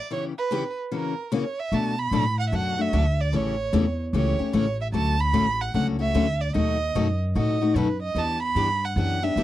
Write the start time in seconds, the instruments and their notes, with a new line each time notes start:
Already playing: violin D5
0.11 steel-string acoustic guitar C#3 E3 B3 C#4 G4, violin C#5
0.38 violin B4
0.51 steel-string acoustic guitar C#3 E3 B3 C#4 G4
0.91 steel-string acoustic guitar C#3 E3 A#3 C#4 F#4, violin A#4
1.32 steel-string acoustic guitar C#3 E3 A#3 C#4 F#4, violin C#5
1.60 violin E5
1.72 upright bass B2, steel-string acoustic guitar B2 F#3 A3 D4 F#4, violin A5
1.99 violin B5
2.11 upright bass A2, steel-string acoustic guitar B2 F#3 A3 D4 F#4
2.40 violin F#5
2.49 upright bass F#2, steel-string acoustic guitar B2, violin E5
2.53 steel-string acoustic guitar F#3 A3 D4 F#4, violin F#5
2.77 steel-string acoustic guitar A3 D4 F#4, violin E5
2.93 upright bass D2, steel-string acoustic guitar B2 F#3 A3 D4 F#4
3.21 violin D5
3.33 upright bass A1, steel-string acoustic guitar C#3 E3 A3 C#4 G4, violin C#5
3.73 upright bass E2, steel-string acoustic guitar C#3 E3 A3 C#4 G4
4.13 upright bass C#2, steel-string acoustic guitar C#3 E3 A3 C#4 G4, violin C#5
4.39 steel-string acoustic guitar A3 C#4 G4, muted upright bass stroke
4.53 upright bass A1, steel-string acoustic guitar C#3 E3 A3 C#4 G4, violin C#5
4.81 violin E5
4.92 upright bass D2, steel-string acoustic guitar D3 F#3 A3 C#4 F#4, violin A5
5.20 violin B5
5.33 upright bass A1, steel-string acoustic guitar D3 F#3 A3 C#4 F#4
5.61 violin F#5
5.74 upright bass C#2, steel-string acoustic guitar D3 F#3 A3 C#4 F#4, violin F#5
5.99 steel-string acoustic guitar A3 C#4 F#4, violin E5
6.14 upright bass D2, steel-string acoustic guitar D3 F#3 A3 C#4 F#4
6.41 violin D5
6.54 upright bass D#2, steel-string acoustic guitar B2 F#3 A3 D#4 F#4, violin D#5
6.95 upright bass F#2, steel-string acoustic guitar B2 F#3 A3 D#4 F#4
7.35 upright bass A2, steel-string acoustic guitar B2 F#3 A3 D#4 F#4, violin D#5
7.61 steel-string acoustic guitar A3 D#4 F#4
7.75 upright bass F#2, steel-string acoustic guitar B2 F#3 A3 D#4 F#4, violin B4
8.03 violin D#5
8.15 upright bass E2, steel-string acoustic guitar E3 B3 D4 G4, violin A5
8.43 violin B5
8.55 upright bass G2, steel-string acoustic guitar E3 B3 D4 G4
8.85 violin F#5
8.96 upright bass F#2, steel-string acoustic guitar E3 B3 D4 G4, violin F#5
9.22 steel-string acoustic guitar B3 D4 G4, violin E5
9.36 upright bass E2, steel-string acoustic guitar E3 B3 D4 G4